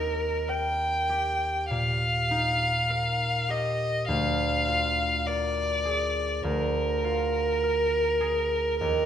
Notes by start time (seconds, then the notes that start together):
Already playing: D#2 D#4 A#4
0.48 A#4 G5
1.09 G4
1.70 A#2 F5
2.31 D#4
2.90 A#4
3.49 G4 D#5
4.08 D2 F5
4.68 F4
5.26 A#4 D5
5.85 G#4
6.44 D2 A#4
7.04 F4
7.63 A#4
8.20 G#4
8.80 D#2 A#4